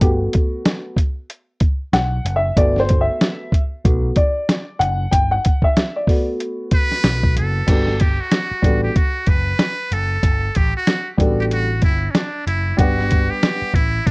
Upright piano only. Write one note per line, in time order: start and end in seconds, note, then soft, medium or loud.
0.01 0.93 A3 medium
0.01 0.94 B3 soft
0.01 0.94 F#4 medium
0.01 0.09 G4 medium
1.93 2.37 F#5 medium
2.36 2.58 E5 medium
2.57 3.49 A3 medium
2.57 3.49 B3 soft
2.57 3.49 F#4 medium
2.57 2.79 D5 loud
2.80 3.01 C5 medium
3.01 3.60 E5 medium
3.84 4.13 A3 soft
3.84 4.13 B3 soft
3.84 4.14 F#4 medium
4.17 4.82 D5 medium
4.79 5.10 F#5 loud
5.11 5.32 G5 medium
5.31 5.64 F#5 medium
5.64 5.97 E5 medium
5.96 6.26 D5 medium
6.08 7.64 A3 medium
6.08 7.64 B3 soft
6.08 7.64 F#4 medium
7.66 7.92 G3 medium
7.66 7.92 B3 medium
7.66 7.93 D4 medium
7.66 7.93 F#4 medium
7.66 7.93 A4 medium
8.62 8.87 G3 medium
8.62 8.88 B3 medium
8.62 8.88 D4 medium
8.62 8.89 F#4 medium
8.62 8.89 A4 medium
11.17 11.66 G3 medium
11.17 11.66 B3 medium
11.17 11.66 D4 medium
11.17 11.67 F#4 medium
11.17 11.67 A4 medium
12.77 13.68 G3 medium
12.77 13.69 B3 medium
12.77 13.69 D4 medium
12.77 13.70 B4 medium
12.77 13.70 F#5 medium